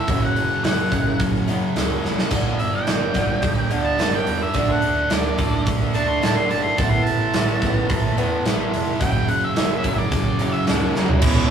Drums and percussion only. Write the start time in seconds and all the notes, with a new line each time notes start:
0.08 kick, open hi-hat
0.36 open hi-hat
0.64 snare, open hi-hat
0.92 kick, open hi-hat
1.20 kick, open hi-hat
1.49 open hi-hat
1.76 snare, open hi-hat
2.05 snare
2.18 snare
2.31 kick, open hi-hat, splash
2.60 open hi-hat
2.87 snare, open hi-hat
3.14 kick, snare, open hi-hat
3.42 kick, open hi-hat
3.71 open hi-hat
3.99 snare, open hi-hat
4.27 open hi-hat
4.54 kick, open hi-hat
4.82 open hi-hat
5.10 snare, open hi-hat
5.38 kick, open hi-hat
5.67 kick, open hi-hat
5.95 open hi-hat
6.23 snare, open hi-hat
6.51 open hi-hat
6.78 kick, open hi-hat
7.07 open hi-hat
7.34 snare, open hi-hat
7.62 kick, snare, open hi-hat
7.90 kick, open hi-hat
8.18 open hi-hat
8.46 snare, open hi-hat
8.74 open hi-hat
9.01 kick, open hi-hat
9.28 open hi-hat
9.56 snare, open hi-hat
9.84 kick, open hi-hat
10.12 kick, open hi-hat
10.39 open hi-hat
10.67 snare, open hi-hat
10.95 snare
11.08 floor tom
11.22 kick, crash